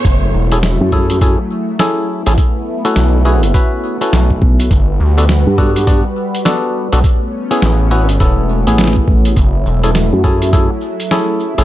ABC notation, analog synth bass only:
X:1
M:4/4
L:1/16
Q:"Swing 16ths" 1/4=103
K:F#m
V:1 name="Analog synth bass" clef=bass
F,,,2 E,,,3 z8 z2 A,,, | z4 B,,,4 z4 B,,,2 z2 | =G,,,2 D,,3 z8 z2 B,,, | z4 A,,,4 E,,,3 z4 z |
F,,,2 E,,,3 z8 z2 A,,, |]